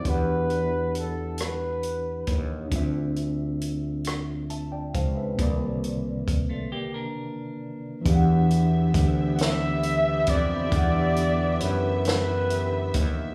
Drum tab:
HH |xxxxxx|xxxxxx|xxx---|xxxxxx|
SD |---r--|---r--|------|---o--|
BD |o----o|o----o|o-o---|o-o--o|

HH |xxxxxx|
SD |---o--|
BD |o----o|